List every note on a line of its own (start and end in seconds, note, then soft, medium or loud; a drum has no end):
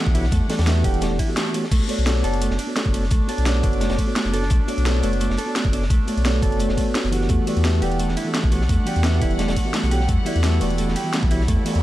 0.00 0.12 E3 medium
0.00 1.68 G3 medium
0.00 1.68 A3 medium
0.00 0.12 B3 medium
0.00 1.68 D4 medium
0.00 0.12 F#4 medium
0.00 0.13 G4 medium
0.00 0.13 A4 medium
0.00 0.13 E5 medium
0.00 1.68 F#5 medium
0.06 0.31 B1 medium
0.06 kick loud
0.13 0.23 E3 medium
0.13 0.24 B3 medium
0.13 0.25 E4 loud
0.13 0.24 F#4 medium
0.13 0.24 G4 medium
0.13 0.25 A4 medium
0.13 0.25 C#5 medium
0.13 closed hi-hat medium
0.13 ride medium
0.24 snare soft
0.32 0.40 E2 loud
0.32 0.48 A3 medium
0.32 kick loud
0.32 closed hi-hat medium
0.48 0.63 E3 medium
0.48 0.59 A3 medium
0.48 0.64 B3 medium
0.48 0.64 F#4 medium
0.48 0.64 G4 medium
0.48 0.65 A4 medium
0.48 0.65 D5 medium
0.48 snare loud
0.48 closed hi-hat medium
0.48 ride medium
0.59 0.83 E2 loud
0.59 snare loud
0.59 closed hi-hat soft
0.59 closed hi-hat medium
0.65 0.81 E3 medium
0.65 0.83 A3 medium
0.65 0.82 B3 medium
0.65 0.82 F#4 medium
0.65 0.83 G4 medium
0.65 0.83 A4 medium
0.65 0.83 E5 loud
0.65 snare loud
0.65 closed hi-hat medium
0.82 1.10 E1 medium
0.82 1.16 E3 medium
0.82 1.17 B3 medium
0.82 1.17 G4 medium
0.82 1.00 G4 loud
0.82 1.18 A4 medium
0.82 1.18 D5 loud
0.82 1.17 F#5 medium
0.82 kick loud
0.82 closed hi-hat medium
0.82 ride medium
0.94 closed hi-hat soft
1.01 1.12 A3 medium
1.01 snare loud
1.01 closed hi-hat medium
1.11 1.18 E1 medium
1.19 1.29 E4 loud
1.19 kick medium
1.19 closed hi-hat medium
1.19 ride medium
1.27 1.51 E3 medium
1.27 1.52 B3 medium
1.27 1.52 F#4 medium
1.27 1.52 G4 medium
1.27 1.53 A4 medium
1.27 1.53 E5 medium
1.36 1.53 A3 medium
1.36 snare loud
1.36 closed hi-hat loud
1.46 closed hi-hat soft
1.52 1.63 E3 medium
1.52 1.64 A3 medium
1.52 1.63 B3 medium
1.52 1.64 F#4 medium
1.52 1.64 G4 medium
1.52 1.64 A4 medium
1.52 1.65 C#5 medium
1.52 closed hi-hat medium
1.52 ride medium
1.64 snare soft
1.71 1.80 B1 loud
1.71 1.88 A3 medium
1.71 11.83 A3 medium
1.71 7.26 D4 medium
1.71 kick loud
1.71 closed hi-hat loud
1.71 crash loud
1.87 1.99 A3 medium
1.87 2.03 B3 medium
1.87 2.03 F#4 medium
1.87 2.04 A4 medium
1.87 2.04 C#5 medium
1.87 2.05 D5 medium
1.87 closed hi-hat medium
1.87 ride medium
1.98 2.23 B1 loud
1.98 closed hi-hat soft
2.05 2.22 A3 medium
2.05 2.21 B3 medium
2.05 2.21 F#4 medium
2.05 2.22 A4 medium
2.05 2.22 C#5 medium
2.05 2.23 D5 loud
2.05 snare loud
2.05 closed hi-hat medium
2.22 2.49 F#1 loud
2.22 2.56 B3 medium
2.22 2.56 F#4 medium
2.22 2.57 A4 medium
2.22 2.40 A4 loud
2.22 2.57 C#5 medium
2.22 2.58 D5 loud
2.22 closed hi-hat medium
2.22 ride medium
2.33 closed hi-hat soft
2.41 2.51 A3 medium
2.41 closed hi-hat loud
2.41 closed hi-hat medium
2.50 2.58 F#1 medium
2.50 snare soft
2.58 2.69 D4 loud
2.58 closed hi-hat medium
2.58 ride medium
2.66 2.91 B3 medium
2.66 2.91 F#4 medium
2.66 2.92 A4 medium
2.66 2.92 C#5 medium
2.66 2.93 D5 medium
2.76 2.92 A3 medium
2.76 snare loud
2.76 closed hi-hat medium
2.76 closed hi-hat loud
2.86 3.10 F#1 medium
2.86 kick loud
2.92 3.04 A3 medium
2.92 3.03 B3 medium
2.92 3.03 F#4 medium
2.92 3.03 A4 medium
2.92 3.04 C#5 medium
2.92 3.04 D5 medium
2.92 closed hi-hat medium
2.92 ride medium
3.03 snare soft
3.10 3.20 B1 loud
3.10 3.27 A3 medium
3.10 kick loud
3.10 closed hi-hat medium
3.10 closed hi-hat loud
3.27 3.42 B3 medium
3.27 3.43 F#4 medium
3.27 3.43 A4 medium
3.27 3.45 A4 loud
3.27 3.44 C#5 medium
3.27 3.44 D5 medium
3.27 closed hi-hat medium
3.27 ride medium
3.38 3.62 B1 loud
3.38 closed hi-hat soft
3.44 3.56 A3 medium
3.44 3.60 B3 medium
3.44 3.61 F#4 medium
3.44 3.62 A4 medium
3.44 3.62 C#5 medium
3.44 3.62 D5 loud
3.44 snare loud
3.44 closed hi-hat medium
3.44 closed hi-hat loud
3.61 3.89 F#1 medium
3.61 3.95 B3 medium
3.61 3.74 D4 loud
3.61 3.96 F#4 medium
3.61 3.96 A4 medium
3.61 3.97 C#5 medium
3.61 3.97 D5 loud
3.61 kick loud
3.61 closed hi-hat medium
3.61 ride medium
3.73 closed hi-hat soft
3.81 3.97 A3 medium
3.81 snare loud
3.81 closed hi-hat medium
3.81 closed hi-hat loud
3.90 3.98 F#1 medium
3.90 snare loud
3.90 closed hi-hat medium
3.98 4.08 A3 medium
3.98 kick medium
3.98 closed hi-hat medium
3.98 ride medium
4.06 4.30 B3 medium
4.06 4.31 F#4 medium
4.06 4.31 A4 medium
4.06 4.32 C#5 medium
4.06 4.32 D5 medium
4.16 4.32 A3 medium
4.16 snare loud
4.16 closed hi-hat loud
4.16 closed hi-hat medium
4.25 4.49 F#1 medium
4.25 closed hi-hat soft
4.31 4.42 B3 medium
4.31 4.43 F#4 medium
4.31 4.43 A4 medium
4.31 4.49 A4 loud
4.31 4.43 C#5 medium
4.31 4.44 D5 medium
4.31 closed hi-hat medium
4.31 ride medium
4.42 snare soft
4.50 4.59 B1 loud
4.50 4.61 A3 medium
4.50 kick loud
4.50 closed hi-hat loud
4.66 4.82 B3 medium
4.66 4.78 D4 loud
4.66 4.83 F#4 medium
4.66 4.83 A4 medium
4.66 4.83 C#5 medium
4.66 4.84 D5 medium
4.66 closed hi-hat medium
4.66 ride medium
4.77 5.02 B1 loud
4.77 closed hi-hat soft
4.84 5.02 A3 medium
4.84 5.00 B3 medium
4.84 5.01 F#4 medium
4.84 5.01 A4 medium
4.84 5.01 C#5 medium
4.84 5.02 D5 loud
4.84 snare loud
4.84 closed hi-hat loud
4.84 closed hi-hat medium
5.01 5.28 F#1 medium
5.01 5.13 A3 medium
5.01 5.35 B3 medium
5.01 5.35 F#4 medium
5.01 5.36 A4 medium
5.01 5.36 C#5 medium
5.01 5.37 D5 loud
5.01 closed hi-hat medium
5.01 ride medium
5.13 closed hi-hat soft
5.21 5.36 A3 medium
5.21 closed hi-hat medium
5.21 closed hi-hat loud
5.30 5.37 F#1 medium
5.30 snare medium
5.37 5.54 A4 loud
5.37 closed hi-hat medium
5.37 ride medium
5.46 5.70 B3 medium
5.46 5.71 F#4 medium
5.46 5.71 A4 medium
5.46 5.71 C#5 medium
5.46 5.72 D5 medium
5.55 5.65 A3 medium
5.55 snare loud
5.55 closed hi-hat loud
5.55 closed hi-hat medium
5.65 5.89 F#1 medium
5.65 kick loud
5.71 5.82 B3 medium
5.71 5.83 D4 loud
5.71 5.82 F#4 medium
5.71 5.83 A4 medium
5.71 5.83 C#5 medium
5.71 5.83 D5 medium
5.71 closed hi-hat medium
5.71 ride medium
5.82 snare soft
5.90 5.99 B1 loud
5.90 6.07 A3 medium
5.90 kick loud
5.90 closed hi-hat medium
6.06 6.18 A3 medium
6.06 6.22 B3 medium
6.06 6.22 F#4 medium
6.06 6.23 A4 medium
6.06 6.23 C#5 medium
6.06 6.23 D5 medium
6.06 closed hi-hat medium
6.06 ride medium
6.17 6.41 B1 loud
6.17 closed hi-hat soft
6.24 6.41 A3 medium
6.24 6.40 B3 medium
6.24 6.40 F#4 medium
6.24 6.41 A4 medium
6.24 6.41 C#5 medium
6.24 6.42 D5 loud
6.24 snare loud
6.24 closed hi-hat medium
6.41 6.68 F#1 medium
6.41 6.75 B3 medium
6.41 6.75 F#4 medium
6.41 6.58 A4 loud
6.41 6.76 A4 medium
6.41 6.76 C#5 medium
6.41 6.77 D5 loud
6.41 kick loud
6.41 closed hi-hat medium
6.41 ride medium
6.52 closed hi-hat soft
6.59 6.70 A3 medium
6.59 closed hi-hat medium
6.69 6.77 F#1 medium
6.69 snare medium
6.76 6.87 A3 medium
6.76 7.10 B3 medium
6.76 7.10 F#4 medium
6.76 7.10 A4 medium
6.76 7.11 C#5 medium
6.76 7.11 D5 medium
6.76 kick medium
6.76 closed hi-hat medium
6.76 ride medium
6.95 7.05 C#4 medium
6.95 snare loud
6.95 closed hi-hat medium
7.04 7.29 F#1 medium
7.04 closed hi-hat soft
7.11 7.44 E3 loud
7.11 7.45 B3 medium
7.11 7.28 D4 medium
7.11 7.45 F#4 medium
7.11 7.46 G4 medium
7.11 7.46 A4 medium
7.11 7.46 F#5 loud
7.11 closed hi-hat medium
7.11 ride medium
7.22 snare soft
7.29 7.38 E2 loud
7.29 11.83 G3 medium
7.29 7.46 A3 medium
7.29 10.06 D4 medium
7.29 11.83 F#5 medium
7.29 kick loud
7.29 closed hi-hat medium
7.45 7.61 E3 medium
7.45 7.57 A3 medium
7.45 7.61 B3 medium
7.45 7.62 F#4 medium
7.45 7.62 G4 medium
7.45 7.62 A4 medium
7.45 7.63 D5 medium
7.45 closed hi-hat medium
7.45 ride medium
7.56 7.81 E2 loud
7.56 closed hi-hat soft
7.63 7.79 E3 medium
7.63 7.81 A3 medium
7.63 7.80 B3 medium
7.63 7.80 F#4 medium
7.63 7.80 G4 medium
7.63 7.81 A4 medium
7.63 7.81 E5 loud
7.63 snare loud
7.63 closed hi-hat loud
7.63 closed hi-hat medium
7.80 8.07 E1 loud
7.80 8.14 E3 medium
7.80 8.15 B3 medium
7.80 7.98 G4 loud
7.80 8.15 G4 medium
7.80 8.16 A4 medium
7.80 8.16 D5 loud
7.80 8.15 F#5 medium
7.80 closed hi-hat medium
7.80 ride medium
7.92 closed hi-hat soft
7.99 8.10 A3 medium
7.99 closed hi-hat medium
8.08 8.16 E1 medium
8.08 snare medium
8.17 8.27 E4 loud
8.17 closed hi-hat medium
8.17 ride medium
8.25 8.49 E3 medium
8.25 8.49 B3 medium
8.25 8.50 F#4 medium
8.25 8.50 G4 medium
8.25 8.50 A4 medium
8.25 8.51 E5 medium
8.34 8.51 A3 medium
8.34 snare loud
8.34 closed hi-hat medium
8.44 8.68 B1 medium
8.44 kick loud
8.50 8.61 E3 medium
8.50 8.62 A3 medium
8.50 8.61 B3 medium
8.50 8.61 F#4 medium
8.50 8.62 G4 medium
8.50 8.62 A4 medium
8.50 8.62 C#5 medium
8.50 closed hi-hat medium
8.50 ride medium
8.61 snare soft
8.69 8.78 E2 loud
8.69 8.85 A3 medium
8.69 kick loud
8.69 closed hi-hat medium
8.69 closed hi-hat loud
8.85 9.01 E3 medium
8.85 9.01 B3 medium
8.85 9.01 F#4 medium
8.85 9.03 G4 loud
8.85 9.02 G4 medium
8.85 9.02 A4 medium
8.85 9.02 D5 medium
8.85 closed hi-hat medium
8.85 ride medium
8.96 9.20 E2 medium
8.96 closed hi-hat soft
9.02 9.19 E3 medium
9.02 9.14 A3 medium
9.02 9.19 B3 medium
9.02 9.19 F#4 medium
9.02 9.20 G4 medium
9.02 9.20 A4 medium
9.02 9.20 E5 loud
9.02 snare loud
9.02 closed hi-hat medium
9.20 9.47 E1 medium
9.20 9.54 E3 medium
9.20 9.54 B3 medium
9.20 9.32 E4 loud
9.20 9.55 G4 medium
9.20 9.55 A4 medium
9.20 9.55 D5 loud
9.20 9.54 F#5 medium
9.20 kick loud
9.20 closed hi-hat medium
9.20 ride medium
9.31 closed hi-hat soft
9.39 9.56 A3 medium
9.39 snare medium
9.39 closed hi-hat medium
9.48 9.56 E1 medium
9.48 snare loud
9.48 closed hi-hat medium
9.56 9.67 A3 medium
9.56 kick medium
9.56 closed hi-hat medium
9.56 ride medium
9.64 9.88 E3 medium
9.64 9.89 B3 medium
9.64 9.89 F#4 medium
9.64 9.90 G4 medium
9.64 9.90 A4 medium
9.64 9.90 E5 medium
9.74 9.90 A3 medium
9.74 snare loud
9.74 closed hi-hat medium
9.83 10.08 B1 medium
9.83 closed hi-hat soft
9.90 10.00 E3 medium
9.90 10.01 B3 medium
9.90 10.01 F#4 medium
9.90 10.07 G4 loud
9.90 10.01 G4 medium
9.90 10.02 A4 medium
9.90 10.02 C#5 medium
9.90 closed hi-hat medium
9.90 ride medium
10.00 snare soft
10.08 10.17 E2 loud
10.08 10.19 A3 medium
10.08 11.83 E4 medium
10.08 kick loud
10.08 closed hi-hat medium
10.24 10.40 E3 medium
10.24 10.40 B3 medium
10.24 10.36 E4 loud
10.24 10.41 F#4 medium
10.24 10.41 G4 medium
10.24 10.41 A4 medium
10.24 10.42 D5 medium
10.24 closed hi-hat medium
10.24 ride medium
10.35 10.60 E2 loud
10.35 closed hi-hat soft
10.42 10.58 E3 medium
10.42 10.60 A3 medium
10.42 10.59 B3 medium
10.42 10.59 F#4 medium
10.42 10.60 G4 medium
10.42 10.60 A4 medium
10.42 10.60 E5 loud
10.42 snare loud
10.42 closed hi-hat medium
10.59 10.86 E1 loud
10.59 10.93 E3 medium
10.59 10.71 A3 medium
10.59 10.94 B3 medium
10.59 10.94 F#4 medium
10.59 10.94 G4 medium
10.59 10.95 A4 medium
10.59 10.95 D5 loud
10.59 closed hi-hat medium
10.59 ride medium
10.70 closed hi-hat soft
10.78 10.94 A3 medium
10.78 closed hi-hat medium
10.88 10.95 E1 medium
10.88 snare soft
10.96 11.12 G4 loud
10.96 closed hi-hat medium
10.96 ride medium
11.03 11.28 E3 medium
11.03 11.28 B3 medium
11.03 11.29 F#4 medium
11.03 11.29 G4 medium
11.03 11.29 A4 medium
11.03 11.30 E5 medium
11.13 11.23 A3 medium
11.13 snare loud
11.13 closed hi-hat medium
11.23 11.47 B1 medium
11.23 kick loud
11.29 11.40 E3 medium
11.29 11.40 B3 medium
11.29 11.41 E4 loud
11.29 11.40 F#4 medium
11.29 11.41 G4 medium
11.29 11.41 A4 medium
11.29 11.41 C#5 medium
11.29 closed hi-hat medium
11.29 ride medium
11.41 snare soft
11.48 11.57 E2 loud
11.48 11.64 A3 medium
11.48 kick loud
11.48 closed hi-hat medium
11.48 noise sweep medium
11.64 11.80 E3 medium
11.64 11.76 A3 medium
11.64 11.80 B3 medium
11.64 11.80 F#4 medium
11.64 11.81 G4 medium
11.64 11.81 A4 medium
11.64 11.81 D5 medium
11.64 closed hi-hat medium
11.64 ride medium
11.75 11.83 E2 loud
11.75 closed hi-hat soft